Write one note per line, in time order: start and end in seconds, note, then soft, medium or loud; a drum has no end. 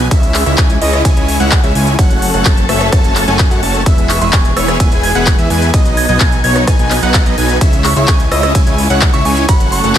0.11 1.97 C#3 medium
0.11 0.44 G#3 medium
0.11 1.97 G#3 medium
0.11 0.44 C#4 medium
0.11 0.44 E4 medium
0.11 1.97 E4 medium
0.11 0.44 C#5 medium
0.11 0.44 E5 medium
0.11 kick loud
0.11 closed hi-hat medium
0.11 ride medium
0.23 closed hi-hat soft
0.34 clap medium
0.34 open hi-hat loud
0.46 0.56 C#2 loud
0.46 0.56 G#3 medium
0.46 0.56 C#4 medium
0.46 0.56 E4 medium
0.46 0.56 C#5 medium
0.46 0.56 E5 medium
0.46 closed hi-hat soft
0.58 0.79 C#2 loud
0.58 0.76 G#3 medium
0.58 0.76 C#4 medium
0.58 0.76 E4 medium
0.58 0.76 C#5 medium
0.58 0.76 G#5 medium
0.58 kick loud
0.58 clap loud
0.58 closed hi-hat medium
0.58 ride medium
0.70 closed hi-hat soft
0.81 1.03 C#2 loud
0.81 1.02 G#3 loud
0.81 1.02 C#4 medium
0.81 1.02 E4 medium
0.81 1.02 C#5 medium
0.81 1.02 D#5 loud
0.81 open hi-hat loud
0.93 cross-stick medium
0.93 closed hi-hat soft
1.05 1.14 C#2 loud
1.05 1.15 G#3 medium
1.05 1.15 C#4 medium
1.05 1.15 E4 medium
1.05 1.15 C#5 medium
1.05 1.15 G#5 medium
1.05 kick loud
1.05 closed hi-hat medium
1.05 ride medium
1.17 1.38 C#2 loud
1.17 1.37 G#3 medium
1.17 1.37 C#4 medium
1.17 1.37 E4 medium
1.17 1.37 C#5 medium
1.17 1.37 G#5 medium
1.17 closed hi-hat soft
1.28 open hi-hat loud
1.40 1.61 C#2 medium
1.40 1.61 G#3 medium
1.40 1.61 C#4 medium
1.40 1.61 E4 medium
1.40 1.61 C#5 medium
1.40 1.61 F#5 loud
1.40 1.61 F#5 medium
1.40 closed hi-hat soft
1.52 kick loud
1.52 clap loud
1.52 closed hi-hat medium
1.52 ride medium
1.63 1.73 C#2 loud
1.63 1.73 G#3 medium
1.63 1.73 C#4 medium
1.63 1.73 E4 medium
1.63 1.74 C#5 medium
1.63 1.74 E5 medium
1.63 closed hi-hat soft
1.75 1.96 C#2 loud
1.75 1.95 G#3 medium
1.75 1.95 C#4 medium
1.75 1.95 E4 medium
1.75 1.95 C#5 medium
1.75 1.95 G#5 medium
1.75 open hi-hat medium
1.87 closed hi-hat soft
1.99 2.32 F#1 medium
1.99 3.84 F#3 medium
1.99 2.31 A3 medium
1.99 3.84 C#4 medium
1.99 2.31 C#4 medium
1.99 2.31 F#4 medium
1.99 3.84 A4 medium
1.99 2.31 C#5 medium
1.99 2.31 F#5 medium
1.99 kick loud
1.99 closed hi-hat medium
1.99 ride medium
2.10 closed hi-hat soft
2.22 open hi-hat loud
2.34 2.43 F#1 loud
2.34 2.44 A3 medium
2.34 2.44 C#4 medium
2.34 2.44 F#4 medium
2.34 2.44 C#5 medium
2.34 2.44 F#5 medium
2.34 closed hi-hat soft
2.45 2.63 C#4 medium
2.45 2.63 C#5 medium
2.45 2.63 A5 medium
2.45 kick loud
2.45 clap loud
2.45 closed hi-hat medium
2.45 ride medium
2.57 closed hi-hat soft
2.69 2.90 F#1 loud
2.69 2.90 A3 loud
2.69 2.90 C#4 medium
2.69 2.90 F#4 medium
2.69 2.90 C#5 medium
2.69 2.90 E5 loud
2.69 cross-stick medium
2.69 open hi-hat medium
2.81 cross-stick medium
2.81 closed hi-hat soft
2.92 3.02 F#1 loud
2.92 3.02 A3 medium
2.92 3.02 C#4 medium
2.92 3.02 F#4 medium
2.92 3.02 C#5 medium
2.92 3.03 A5 medium
2.92 kick loud
2.92 cross-stick medium
2.92 closed hi-hat medium
2.92 ride medium
3.04 3.25 F#1 loud
3.04 3.24 A3 medium
3.04 3.24 C#4 medium
3.04 3.24 F#4 medium
3.04 3.24 C#5 medium
3.04 3.24 A5 medium
3.04 closed hi-hat soft
3.16 clap medium
3.16 open hi-hat loud
3.28 3.49 F#1 medium
3.28 3.48 A3 medium
3.28 3.48 C#4 medium
3.28 3.48 F#4 medium
3.28 3.48 C#5 medium
3.28 3.48 G#5 medium
3.28 3.48 G#5 loud
3.28 closed hi-hat soft
3.39 kick loud
3.39 clap loud
3.39 closed hi-hat medium
3.39 ride medium
3.51 3.60 F#2 loud
3.51 3.61 A3 medium
3.51 3.61 C#4 medium
3.51 3.61 F#4 medium
3.51 3.61 C#5 medium
3.51 3.61 F#5 medium
3.51 closed hi-hat soft
3.63 3.84 F#1 loud
3.63 3.83 A3 medium
3.63 3.83 C#4 medium
3.63 3.83 F#4 medium
3.63 3.83 C#5 medium
3.63 3.83 A5 medium
3.63 open hi-hat loud
3.75 closed hi-hat soft
3.86 5.72 E3 medium
3.86 4.19 G#3 medium
3.86 7.57 B3 medium
3.86 4.19 B3 medium
3.86 4.19 E4 medium
3.86 5.72 G#4 medium
3.86 4.19 B4 medium
3.86 4.19 E5 medium
3.86 kick loud
3.86 closed hi-hat medium
3.86 ride medium
3.98 closed hi-hat soft
4.09 4.19 C#6 medium
4.09 clap medium
4.09 open hi-hat loud
4.21 4.31 E1 loud
4.21 4.31 G#3 medium
4.21 4.31 B3 medium
4.21 4.31 E4 medium
4.21 4.31 B4 medium
4.21 4.31 E5 medium
4.21 4.54 C#6 medium
4.21 closed hi-hat soft
4.33 4.51 G#5 medium
4.33 kick loud
4.33 clap loud
4.33 closed hi-hat medium
4.33 ride medium
4.45 closed hi-hat soft
4.57 4.78 E1 loud
4.57 4.77 G#3 loud
4.57 4.77 B3 medium
4.57 4.77 E4 medium
4.57 4.77 B4 medium
4.57 4.77 C#5 loud
4.57 4.64 E6 medium
4.57 cross-stick medium
4.57 open hi-hat loud
4.68 4.76 E6 medium
4.68 cross-stick medium
4.68 closed hi-hat soft
4.80 4.89 E1 loud
4.80 4.90 G#3 medium
4.80 4.90 B3 medium
4.80 4.90 E4 medium
4.80 4.90 G#5 medium
4.80 4.90 G#5 loud
4.80 kick loud
4.80 closed hi-hat medium
4.80 ride medium
4.92 5.13 E1 loud
4.92 5.12 G#3 medium
4.92 5.12 B3 medium
4.92 5.12 E4 medium
4.92 5.12 B4 medium
4.92 5.12 G#5 medium
4.92 closed hi-hat soft
5.03 5.11 G#6 medium
5.03 open hi-hat loud
5.15 5.36 E1 medium
5.15 5.36 G#3 medium
5.15 5.36 B3 medium
5.15 5.36 E4 medium
5.15 5.36 B4 medium
5.15 5.36 F#5 medium
5.15 5.36 F#5 loud
5.15 5.23 G#6 medium
5.15 closed hi-hat soft
5.27 kick loud
5.27 clap loud
5.27 closed hi-hat medium
5.27 ride medium
5.39 5.48 E2 loud
5.39 5.49 G#3 medium
5.39 5.49 B3 medium
5.39 5.49 E4 medium
5.39 5.49 B4 medium
5.39 5.49 E5 medium
5.39 closed hi-hat soft
5.50 5.71 E2 loud
5.50 5.70 G#3 medium
5.50 5.70 B3 medium
5.50 5.70 E4 medium
5.50 5.70 B4 medium
5.50 5.70 G#5 medium
5.50 open hi-hat medium
5.62 closed hi-hat soft
5.74 6.07 B1 medium
5.74 7.59 F#3 medium
5.74 6.06 F#3 medium
5.74 6.06 B3 medium
5.74 7.59 D#4 medium
5.74 6.06 D#4 medium
5.74 6.06 B4 medium
5.74 6.06 D#5 medium
5.74 kick loud
5.74 closed hi-hat medium
5.74 ride medium
5.85 closed hi-hat soft
5.97 6.07 G#6 medium
5.97 open hi-hat loud
6.09 6.18 B1 loud
6.09 6.19 F#3 medium
6.09 6.19 B3 medium
6.09 6.19 D#4 medium
6.09 6.19 B4 medium
6.09 6.19 D#5 medium
6.09 6.16 G#6 medium
6.09 closed hi-hat soft
6.20 6.38 B3 medium
6.20 6.39 B4 medium
6.20 6.39 G#5 medium
6.20 6.28 G#6 medium
6.20 kick loud
6.20 clap loud
6.20 closed hi-hat medium
6.20 ride medium
6.32 closed hi-hat soft
6.44 6.65 B1 medium
6.44 6.65 F#3 loud
6.44 6.65 B3 medium
6.44 6.65 D#4 medium
6.44 6.65 B4 medium
6.44 6.65 C#5 loud
6.44 6.91 G#6 loud
6.44 open hi-hat medium
6.56 cross-stick medium
6.56 closed hi-hat soft
6.67 6.77 B1 loud
6.67 6.77 G#5 loud
6.67 kick loud
6.67 cross-stick medium
6.67 closed hi-hat medium
6.67 ride medium
6.79 7.00 B1 loud
6.79 6.99 F#3 medium
6.79 6.99 B3 medium
6.79 6.99 D#4 medium
6.79 6.99 B4 medium
6.79 6.99 G#5 medium
6.79 closed hi-hat soft
6.91 clap medium
6.91 open hi-hat loud
7.03 7.24 B1 medium
7.03 7.23 F#3 medium
7.03 7.23 B3 medium
7.03 7.23 D#4 medium
7.03 7.23 B4 medium
7.03 7.23 F#5 medium
7.03 7.23 F#5 loud
7.03 closed hi-hat soft
7.14 kick loud
7.14 clap loud
7.14 closed hi-hat medium
7.14 ride medium
7.26 7.35 B1 loud
7.26 7.36 F#3 medium
7.26 7.36 B3 medium
7.26 7.36 D#4 medium
7.26 7.36 B4 medium
7.26 7.36 D#5 medium
7.26 closed hi-hat soft
7.38 7.59 B1 loud
7.38 7.58 F#3 medium
7.38 7.58 B3 medium
7.38 7.58 D#4 medium
7.38 7.58 B4 medium
7.38 7.58 G#5 medium
7.38 open hi-hat medium
7.49 closed hi-hat soft
7.61 7.94 C#2 loud
7.61 9.47 C#3 medium
7.61 9.47 G#3 medium
7.61 7.94 C#4 medium
7.61 7.94 E4 medium
7.61 9.47 E4 medium
7.61 7.94 C#5 medium
7.61 7.94 E5 medium
7.61 kick loud
7.61 closed hi-hat loud
7.61 ride medium
7.73 closed hi-hat soft
7.84 7.94 C#6 medium
7.84 clap medium
7.84 open hi-hat loud
7.96 8.06 C#2 medium
7.96 8.06 G#3 medium
7.96 8.06 C#4 medium
7.96 8.06 E4 medium
7.96 8.06 C#5 medium
7.96 8.06 E5 medium
7.96 8.29 C#6 medium
7.96 closed hi-hat soft
8.08 8.29 C#2 medium
8.08 8.26 G#3 medium
8.08 8.26 C#4 medium
8.08 8.26 E4 medium
8.08 8.26 C#5 medium
8.08 8.26 G#5 medium
8.08 kick loud
8.08 clap loud
8.08 closed hi-hat loud
8.08 ride medium
8.20 closed hi-hat soft
8.31 8.53 C#2 loud
8.31 8.52 G#3 loud
8.31 8.52 C#4 medium
8.31 8.52 E4 medium
8.31 8.52 C#5 medium
8.31 8.52 D#5 loud
8.31 8.39 E6 medium
8.31 cross-stick medium
8.31 open hi-hat medium
8.43 8.51 E6 medium
8.43 cross-stick medium
8.43 closed hi-hat soft
8.55 8.64 C#2 loud
8.55 8.65 G#3 medium
8.55 8.65 G#5 medium
8.55 kick loud
8.55 closed hi-hat loud
8.55 ride medium
8.67 8.88 C#2 loud
8.67 8.87 G#3 medium
8.67 8.87 C#4 medium
8.67 8.87 E4 medium
8.67 8.87 C#5 medium
8.67 8.87 G#5 medium
8.67 closed hi-hat soft
8.78 open hi-hat loud
8.90 9.11 C#2 medium
8.90 9.11 G#3 medium
8.90 9.11 C#4 medium
8.90 9.11 E4 medium
8.90 9.11 C#5 medium
8.90 9.11 F#5 loud
8.90 closed hi-hat soft
9.02 kick loud
9.02 clap loud
9.02 closed hi-hat loud
9.02 ride medium
9.13 9.23 C#2 loud
9.13 9.24 G#3 medium
9.13 9.24 C#4 medium
9.13 9.24 E4 medium
9.13 9.24 C#5 medium
9.13 9.24 E5 medium
9.13 9.21 C#6 medium
9.13 closed hi-hat soft
9.25 9.46 C#2 loud
9.25 9.45 G#3 medium
9.25 9.45 C#4 medium
9.25 9.45 E4 medium
9.25 9.45 C#5 medium
9.25 9.45 G#5 medium
9.25 9.33 C#6 medium
9.25 open hi-hat medium
9.37 closed hi-hat soft
9.49 9.82 F#1 loud
9.49 9.98 F#3 medium
9.49 9.81 A3 medium
9.49 9.98 C#4 medium
9.49 9.81 C#4 medium
9.49 9.81 F#4 medium
9.49 9.98 A4 medium
9.49 9.81 F#5 medium
9.49 9.68 B5 medium
9.49 kick loud
9.49 closed hi-hat loud
9.49 ride medium
9.60 closed hi-hat soft
9.72 9.92 C#6 loud
9.72 open hi-hat loud
9.84 9.93 F#1 medium
9.84 9.94 A3 medium
9.84 9.94 C#4 medium
9.84 9.94 F#4 medium
9.84 9.94 C#5 medium
9.84 9.94 F#5 medium
9.84 closed hi-hat soft
9.95 clap loud